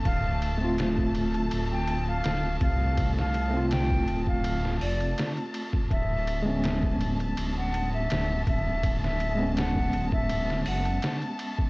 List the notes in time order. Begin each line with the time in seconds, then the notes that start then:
Already playing: A3 A5
0.05 D1 F5, kick, ride
0.42 ride
0.58 A3 C4
0.64 F4
0.78 snare, ride
0.98 kick
1.15 ride
1.34 ride
1.51 D1, ride
1.72 G5
1.88 ride
2.08 F5
2.24 D1, snare, ride
2.61 C2 F5, kick, ride
2.98 kick, ride
3.18 F5, snare
3.34 ride
3.50 A3 C4
3.57 F4
3.71 G5, snare, ride
3.90 kick
4.07 D1, ride
4.27 F5, kick
4.44 ride
4.65 snare
4.81 F1 D5, open hi-hat
5.00 ride
5.18 snare, ride
5.37 ride
5.54 ride
5.73 kick
5.91 D1 E5 A5, kick, ride
6.28 ride
6.43 G#3 B3
6.49 C#4
6.64 snare, ride
6.83 kick
7.01 ride
7.20 ride
7.37 D1, ride
7.58 F#5
7.74 ride
7.94 E5
8.10 D1, snare, ride
8.47 D1 E5, kick, ride
8.83 kick, ride
9.04 E5, snare
9.20 ride
9.35 G#3 B3
9.42 C#4
9.57 F#5, snare, ride
9.76 kick
9.93 D1, ride
10.12 E5, kick
10.30 ride
10.50 snare
10.66 F#1 F#5, open hi-hat
10.85 ride
11.02 snare, ride
11.22 ride
11.39 ride
11.59 kick